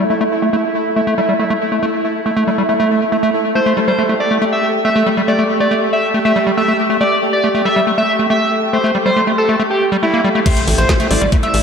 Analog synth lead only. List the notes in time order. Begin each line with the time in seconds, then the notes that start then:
3.55 C5
3.88 C5
4.20 D5
4.52 E5
4.85 E5
5.28 D5
5.60 D5
5.93 E5
6.25 E5
6.57 E5
7.01 D5
7.33 D5
7.65 E5
7.98 E5
8.30 E5
8.73 C5
9.06 C5
9.38 A4
9.70 G4
10.03 E4
10.46 C5
10.78 C5
11.11 D5
11.43 E5